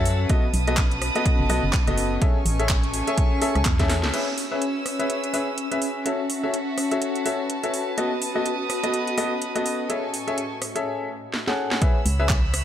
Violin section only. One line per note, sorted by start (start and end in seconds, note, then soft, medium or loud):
0.00 0.28 F#5 medium
0.00 0.26 E6 medium
0.00 0.28 A6 medium
0.30 2.20 B4 medium
0.30 2.20 A5 medium
0.30 2.20 D#6 medium
2.22 4.12 A3 medium
2.22 4.12 G#5 medium
2.22 4.12 C#6 medium
4.14 6.04 C#4 medium
4.14 6.04 B4 medium
4.14 6.04 E6 medium
6.06 7.96 F#4 medium
6.06 7.96 E5 medium
6.06 9.86 A5 medium
7.98 9.88 B4 medium
7.98 9.88 D#6 medium
9.90 10.85 A4 medium
9.90 10.85 G#5 medium
9.90 10.85 C#6 medium
11.82 12.64 C#5 medium
11.82 12.64 B5 medium
11.82 12.64 E6 medium